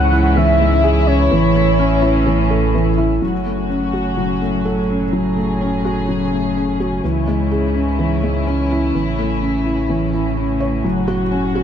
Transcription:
Already playing: C#2 G#2 C#3 E3 G#3 C#4 E4 F#5
0.12 E4
0.36 E3 E5
0.60 G#3
0.84 G#4
1.07 C#4 C#5
1.31 A1 A2 E3 C#4
1.55 A3
1.79 C#4
2.02 E4
2.26 E3
2.50 A4
2.74 E3
2.98 E4
3.22 F#1 A2 C#3 F#3 C#4 F#4
3.46 A3
3.69 C#4
3.93 F#4
4.17 F#3
4.41 A3
4.65 A4
4.90 C#4
5.13 F#3 G#4
5.37 A3
5.61 C#4
5.85 F#4
6.09 F#3
6.32 A3
6.56 C#4
6.80 F#4
7.04 C#2 G#2 E3 E4
7.28 G#3
7.51 G#4
7.75 C#4
7.99 E3
8.23 G#3
8.47 C#4
8.71 E4
8.94 A1 A2 E3
9.18 A3
9.42 C#4
9.66 E4
9.89 E3
10.13 E4
10.37 C#4
10.60 C#5
10.84 F#1 F#3 F#4
11.08 F#4
11.31 C#4
11.55 F#4

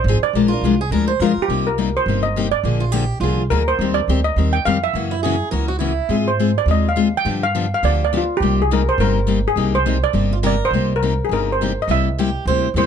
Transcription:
Already playing: C5
0.04 G#1
0.08 F3 C4 D#4 G#4
0.23 D5
0.33 A#1 F3 G#3 D4 F4 A#4
0.48 F4 A#4
0.53 D4 F4
0.61 C2 F3 G#3 D4 F4
0.65 A#4
0.81 G#4
0.91 D2 F3 G#3 D4 F4 A#4
1.08 C5
1.19 F2 F3 G#3 D4 F4 A#4
1.37 muted upright bass stroke
1.42 G4
1.48 C2 C3 G3 A#3 D#4 G4
1.67 A#4
1.78 C3 G3 A#3 D#4 G4
1.97 C5
2.06 G1 C3 G3 A#3 D#4 G4
2.23 D#5
2.36 C3 G3 A#3 D#4 G4
2.52 D5
2.63 A#1 D3 F3 A#3 D4 G#4
2.80 F4
2.92 D3 F3 A#3 D4 G4 G#4
3.20 C2 D3 F3 A#3 D4 F4 G#4
3.50 D2 D3 F3 A#3 D4 G#4 A#4
3.68 C5
3.79 D#2 D#3 G3 C4 G4 A#4
3.94 D5
4.08 D2 D#3 G3 C4 G4 A#4
4.24 D#5
4.36 D#2 D#3 G3 C4 G4 A#4
4.53 G5
4.65 F2 D#3 G3 C4 G4 A#4 F5
4.84 E5
4.93 F#2 C#3 E3 A#3 C#4 F#4
5.11 E4
5.23 C#3 E3 A#3 C#4 F#4 G#4
5.51 C#2 C#3 E3 A#3 C#4 F#4 A#4
5.68 F#4
5.79 C#3 E3 A#3 C#4 E4 F#4
6.09 G#2 G#3 C4 F4 G#4
6.28 C5
6.39 G#3 C4 F4 G#4
6.58 D5
6.66 D#2 G#3 C4 F4 G#4
6.71 D#5
6.89 F5
6.96 G#3 C4 F4 G#4
7.17 G5
7.25 G2 D3 F3 B3 D4 G4
7.43 F5
7.55 D3 F3 B3 D4 G4
7.74 F5
7.83 D2 D3 F3 B3 D4 G4 D5
8.04 D5
8.13 D3 F3 B3 D4 G4
8.17 F4
8.37 C2 G4
8.42 C3 G3 A#3 D#4 G4
8.62 G#4
8.71 C3 G3 A#3 D#4 G4 A#4
8.89 C5
8.98 G1 C3 G3 A#3 D#4 G4 A#4
9.27 C3 G3 A#3 D#4 G4
9.48 G#4
9.56 C2 C3 G3 A#3 D#4 G4
9.75 C5
9.86 C3 G3 A#3 D#4 G4
10.04 D5
10.13 G1 C3 G3 A#3 D#4 G4
10.33 F4
10.43 C3 G3 A#3 D#4 G4 A#4 D5
10.65 C5
10.71 C2 C3 G3 A#3 D#4
10.75 G4
10.96 A#4
11.03 C3 G3 A#3 D#4 G4
11.25 G#4
11.29 G1 C3 G3 A#3 D#4 G4
11.33 A#4
11.52 C5
11.61 C3 G3 A#3 D#4 G4
11.82 D#5
11.88 C2 C3 G3 A#3 E4 G4 E5
12.18 C3 G3 A#3 E4 G4
12.45 D2 C3 G3 A#3 E4 G4 C5
12.74 E2 C3 G3 A#3 E4 G4 C5

